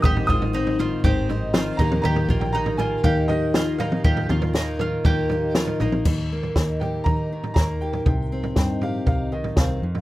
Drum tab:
CC |----------------|----------------|----------------|x---------------|
SD |------------o---|------------o---|----o-------o---|----o-------o---|
T2 |------------o--o|------------o--o|--o---------o--o|----------------|
FT |oo-o-oo-o-o---o-|oo-o-oo-o-o---o-|oo-o--o-o-o--oo-|o--o--o-o--o---o|
BD |o-o-----o-----o-|--o-----o-------|o-------o-------|o---o---o---o---|

CC |----------------|
SD |----o-------o---|
T2 |----------------|
FT |o--o--o-o--o---o|
BD |o---o---o---o---|